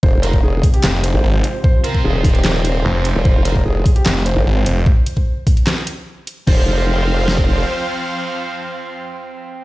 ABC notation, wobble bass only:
X:1
M:4/4
L:1/16
Q:1/4=149
K:Fm
V:1 name="Wobble bass" clef=bass
F,,,4 F,,,2 z4 z A,,, z4 | z4 E,,,8 z3 E,,, | F,,,4 F,,,2 z4 z A,,, z4 | z16 |
F,,,12 z4 | z16 |]